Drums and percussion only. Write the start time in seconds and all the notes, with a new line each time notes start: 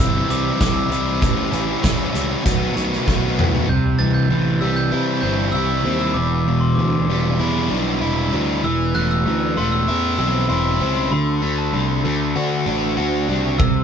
0.30 closed hi-hat
0.61 kick, snare, closed hi-hat
0.92 closed hi-hat
1.22 kick, closed hi-hat
1.53 closed hi-hat
1.84 kick, snare, closed hi-hat
2.15 closed hi-hat
2.46 kick, closed hi-hat
2.77 closed hi-hat
2.93 snare
3.08 kick, snare
3.39 mid tom
3.55 floor tom
13.60 kick